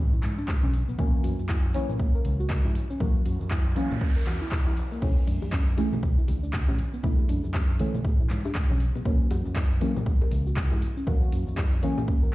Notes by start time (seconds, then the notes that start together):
Already playing: A1
0.13 E4, shaker
0.23 G#2, clap, open hi-hat, high conga
0.38 D4, shaker
0.48 kick, clap, low conga, shaker
0.63 B1 C#4, high conga, shaker
0.74 open hi-hat
0.89 B1 B3, shaker
0.98 A#1 E3 F#3 A#3 C#4 A#4, kick, high conga, shaker
1.14 shaker
1.24 F#2 F#4, open hi-hat
1.39 F#2, high conga, shaker
1.49 E4, kick, clap, shaker
1.64 shaker
1.74 E3 F#3 A#3 C#4, open hi-hat
1.89 A#2, high conga, shaker
2.00 A#1 A#3, kick, shaker
2.15 A#4, shaker
2.25 C#2, open hi-hat, high conga
2.40 F#4, shaker
2.50 kick, clap, low conga, shaker
2.65 G#2 E4, high conga, shaker
2.75 open hi-hat
2.90 C#4, shaker
3.00 A#1 E3 F#3 A#3 F#4 A#4, kick, noise sweep, high conga, shaker
3.15 shaker
3.26 F#2 F#4, open hi-hat
3.41 F#2, high conga, shaker
3.51 E4, kick, clap, shaker
3.66 shaker
3.76 E3 F#3 A#3 C#4, open hi-hat
3.91 A#2, high conga, shaker
4.01 A#3, kick, shaker
4.16 A#4, shaker
4.26 E2 F#4, clap, open hi-hat, high conga
4.41 E4, shaker
4.52 E4, kick, clap, low conga, shaker
4.67 E4, high conga, shaker
4.77 open hi-hat
4.92 A#3, shaker
5.02 B1 D3 E3 A3 C#4 E4, kick, crash, high conga, shaker
5.17 shaker
5.27 F#2 D4, open hi-hat
5.42 F#2, high bongo, high conga, shaker
5.53 C#4, kick, clap, shaker
5.68 shaker
5.77 D3 E3 A3 C#4 E4, open hi-hat, high bongo
5.93 B2, high conga, shaker
6.03 B1 A3, kick, shaker
6.18 E4, shaker
6.28 D2, open hi-hat, high bongo, high conga
6.43 D4, shaker
6.53 kick, clap, low conga, shaker
6.68 A2 C#4, high bongo, high conga, shaker
6.79 open hi-hat
6.94 B3, shaker
7.03 B1 D3 E3 A3 E4, kick, high conga, shaker
7.19 high bongo, shaker
7.29 F#2 D4, open hi-hat
7.44 F#2, high conga, shaker
7.54 C#4, kick, clap, high bongo, shaker
7.69 shaker
7.79 D3 E3 A3 C#4 E4, open hi-hat
7.94 B2, high conga, shaker
8.05 A1 A3, kick, high bongo, shaker
8.20 E4, shaker
8.30 G#2, clap, open hi-hat, high conga
8.45 D4, high bongo, shaker
8.55 kick, clap, low conga, shaker
8.70 B1 C#4, high conga, shaker
8.80 open hi-hat
8.95 B1 B3, high bongo, shaker
9.05 A#1 E3 F#3 A#3 C#4 A#4, kick, high conga, shaker
9.21 shaker
9.31 F#2 F#4, open hi-hat, high bongo
9.45 F#2, high conga, shaker
9.56 E4, kick, clap, shaker
9.71 shaker
9.81 E3 F#3 A#3 C#4 A#4, open hi-hat, high bongo
9.96 A#2, high conga, shaker
10.06 A#1 A#3, kick, shaker
10.21 A#4, high bongo, shaker
10.31 C#2, open hi-hat, high conga
10.47 F#4, shaker
10.56 kick, clap, low conga, shaker
10.71 G#2 E4, high bongo, high conga, shaker
10.82 open hi-hat
10.97 C#4, shaker
11.07 A#1 E3 F#3 A#3 F#4 A#4, kick, high bongo, high conga, shaker
11.22 shaker
11.32 F#2 F#4, open hi-hat
11.47 F#2, high conga, shaker
11.57 E4, kick, clap, high bongo, shaker
11.73 shaker
11.82 E3 F#3 A#3 C#4 A#4, open hi-hat
11.98 A#2, high bongo, high conga, shaker
12.08 G#1 A#3, kick, shaker
12.23 A#4, shaker